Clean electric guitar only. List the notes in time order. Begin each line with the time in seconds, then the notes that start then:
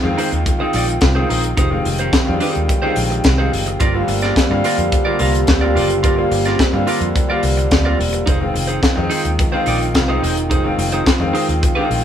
0.04 muted clean electric guitar stroke
0.18 D#4 G#4 C5
0.32 muted clean electric guitar stroke
0.46 muted clean electric guitar stroke
0.60 D#4 G#4 C5
0.74 D#4 G#4 D5
0.88 muted clean electric guitar stroke
1.02 muted clean electric guitar stroke
1.15 D#4 G#4 C5
1.29 D#4 G#4 C5
1.43 muted clean electric guitar stroke
1.57 D#4 G#4 C5
1.71 muted clean electric guitar stroke
1.85 muted clean electric guitar stroke
1.99 D#4 G#4 C5
2.13 muted clean electric guitar stroke
2.27 muted clean electric guitar stroke
2.41 D#4 G#4 C5
2.55 muted clean electric guitar stroke
2.69 muted clean electric guitar stroke
2.82 D#4 G#4 C5
2.96 muted clean electric guitar stroke
3.10 muted clean electric guitar stroke
3.25 muted clean electric guitar stroke
3.38 D#4 G#4 C5
3.52 muted clean electric guitar stroke
3.66 muted clean electric guitar stroke
3.80 F4 A#4 D5
3.95 muted clean electric guitar stroke
4.08 muted clean electric guitar stroke
4.22 F4 A#4 D5
4.36 muted clean electric guitar stroke
4.51 muted clean electric guitar stroke
4.65 F4 A#4 D5
4.78 muted clean electric guitar stroke
4.92 muted clean electric guitar stroke
5.05 F4 A#4 D5
5.19 F4 A#4 F5
5.34 muted clean electric guitar stroke
5.48 muted clean electric guitar stroke
5.61 F4 A#4 D5
5.75 F4 A#4 D5
5.90 muted clean electric guitar stroke
6.03 F4 A#4 D5
6.17 muted clean electric guitar stroke
6.31 muted clean electric guitar stroke
6.46 F4 A#4 D5
6.60 muted clean electric guitar stroke
6.74 muted clean electric guitar stroke
6.87 F4 A#4 D5
7.01 muted clean electric guitar stroke
7.16 muted clean electric guitar stroke
7.30 F4 A#4 D5
7.44 muted clean electric guitar stroke
7.57 muted clean electric guitar stroke
7.72 muted clean electric guitar stroke
7.85 F4 A#4 D5
7.99 muted clean electric guitar stroke
8.13 muted clean electric guitar stroke
8.26 D#4 G#4 C5
8.41 muted clean electric guitar stroke
8.54 muted clean electric guitar stroke
8.67 D#4 G#4 C5
8.82 muted clean electric guitar stroke
8.96 muted clean electric guitar stroke
9.10 D#4 G#4 C5
9.25 muted clean electric guitar stroke
9.39 muted clean electric guitar stroke
9.52 D#4 G#4 C5
9.66 D#4 G#4 D5
9.81 muted clean electric guitar stroke
9.95 muted clean electric guitar stroke
10.08 D#4 G#4 C5
10.23 D#4 G#4 C5
10.36 muted clean electric guitar stroke
10.50 D#4 G#4 C5
10.65 muted clean electric guitar stroke
10.79 muted clean electric guitar stroke
10.92 D#4 G#4 C5
11.06 muted clean electric guitar stroke
11.20 muted clean electric guitar stroke
11.34 D#4 G#4 C5
11.48 muted clean electric guitar stroke
11.62 muted clean electric guitar stroke
11.75 D#4 G#4 C5
11.89 muted clean electric guitar stroke